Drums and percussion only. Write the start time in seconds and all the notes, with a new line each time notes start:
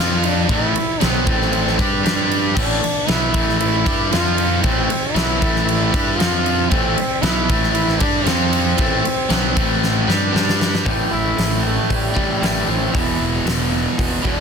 0.24 ride
0.49 kick, ride
0.76 ride
1.01 snare, ride
1.27 kick, ride
1.42 snare
1.53 ride
1.67 snare
1.79 kick, ride
2.06 snare, ride
2.31 ride
2.57 kick, crash
2.84 ride
3.08 snare, ride
3.34 kick, ride
3.49 snare
3.60 ride
3.86 kick, ride
4.12 snare, ride
4.38 ride
4.64 kick, ride
4.90 ride
5.16 snare, ride
5.42 kick, ride
5.56 snare
5.69 ride
5.94 kick, ride
6.20 snare, ride
6.46 ride
6.71 kick, ride
6.98 ride
7.23 snare, ride
7.49 kick, ride
7.63 snare
7.75 ride
7.88 snare
8.00 kick, ride
8.26 snare, ride
8.53 ride
8.78 kick, ride
9.05 ride
9.30 snare, ride
9.57 kick, ride
9.83 snare
10.10 snare
10.36 snare
10.49 snare
10.61 snare
10.75 snare
10.86 kick, open hi-hat
11.38 snare, open hi-hat
11.90 kick, open hi-hat
12.17 kick
12.43 snare, open hi-hat
12.95 kick, open hi-hat
13.47 snare, open hi-hat
13.99 kick, open hi-hat
14.25 kick